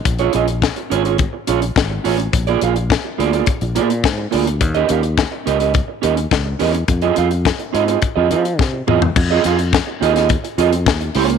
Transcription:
<<
  \new Staff \with { instrumentName = "Clean electric guitar" } { \time 4/4 \key f \minor \tempo 4 = 105 r16 <des' f' aes' des''>16 <des' f' aes' ees''>16 r8. <des' f' aes' des''>16 <des' f' aes' des''>16 r8 <des' f' aes' des''>16 r8. <des' f' aes' des''>16 r16 | r16 <bes f' aes' d''>16 <bes f' aes' f''>16 r8. <bes f' aes' d''>16 <bes f' aes' d''>16 r8 <bes f' aes' d''>16 r8. <bes f' aes' d''>16 r16 | r16 <des' g' bes' ees''>16 <des' g' bes' f''>16 r8. <des' g' bes' ees''>16 <des' g' bes' ees''>16 r8 <des' g' bes' ees''>16 r8. <des' g' bes' ees''>16 r16 | r16 <c' f' aes' ees''>16 <c' f' aes' f''>16 r8. <c' f' aes' ees''>16 <c' f' aes'>16 r16 <c' f' aes' ees''>16 <c' f' aes' ees''>16 r8. <c' f' aes' ees''>16 r16 |
r16 <c' f' aes' ees''>16 <c' f' aes' f''>16 r8. <c' f' aes' ees''>16 <c' f' aes' ees''>16 r8 <c' f' aes' ees''>16 r8. <bes f' aes' des''>16 r16 | }
  \new Staff \with { instrumentName = "Fingered electric bass" } { \clef bass \time 4/4 \key f \minor bes,,8 bes,,8. r16 aes,,8. r16 bes,,8 aes,,8 a,,8 | bes,,8 bes,,8. r16 d,8 r16 bes,,16 bes,8 aes,8 d,8 | ees,8 ees,8. r16 des,8. r16 ees,8 des,8 e,8 | f,8 f,8. r16 aes,8 r16 f,16 f8 c8 e,8 |
f,8 f,8. r16 ees,8. r16 f,8 ees,8 des,8 | }
  \new DrumStaff \with { instrumentName = "Drums" } \drummode { \time 4/4 <hh bd>16 hh16 hh16 hh16 <bd sn>16 hh16 hh16 hh16 <hh bd>8 hh16 hh16 <bd sn>8 hho16 hh16 | <hh bd>16 hh16 hh16 hh16 <bd sn>8 hh16 hh16 <hh bd>16 hh16 hh16 hh16 <bd sn>8 hho16 hh16 | <hh bd>16 hh16 hh16 hh16 <bd sn>8 hh16 hh16 <hh bd>8 hh16 hh16 <bd sn>8 hho16 hh16 | <hh bd>16 hh16 hh16 hh16 <bd sn>16 hh16 hh16 hh16 <hh bd>8 hh16 hh16 <bd sn>8 toml16 tomfh16 |
<cymc bd>8 hh16 hh16 <bd sn>8 hh16 <hh sn>16 <hh bd>16 hh16 hh16 hh16 <bd sn>16 hh16 hho16 hh16 | }
>>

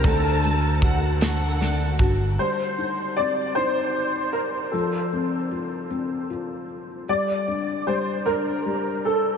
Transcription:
<<
  \new Staff \with { instrumentName = "Violin section" } { \time 6/8 \key c \dorian \tempo 4. = 51 a''4 fis''8 fis''4 r8 | r2. | r2. | r2. | }
  \new Staff \with { instrumentName = "Grand piano" } { \time 6/8 \key c \dorian a'2 r4 | c''4 d''8 c''4 bes'8 | a'2~ a'8 r8 | d''4 c''8 bes'4 a'8 | }
  \new Staff \with { instrumentName = "Steel-string acoustic guitar" } { \time 6/8 \key c \dorian <d a d' fis' a'>8 <d' fis' a'>8 <a d' fis' a'>8 <d a d' fis' a'>8 <a d' fis' a'>8 <d' fis' a'>8 | r2. | r2. | r2. | }
  \new Staff \with { instrumentName = "Felt piano" } { \time 6/8 \key c \dorian d8 a8 fis'8 a8 d8 fis'8 | g8 ees'8 c'8 ees'4. | f8 c'8 f'8 c'8 f'4 | g8 d'8 g8 d'8 g4 | }
  \new Staff \with { instrumentName = "Fingered electric bass" } { \clef bass \time 6/8 \key c \dorian d,2~ d,8 g,,8 | r2. | r2. | r2. | }
  \new DrumStaff \with { instrumentName = "Drums" } \drummode { \time 6/8 <hh bd>8 hh8 <hh bd>8 <hh sn>8 <hh sn>8 <hh bd>8 | r4. r4. | r4. r4. | r4. r4. | }
>>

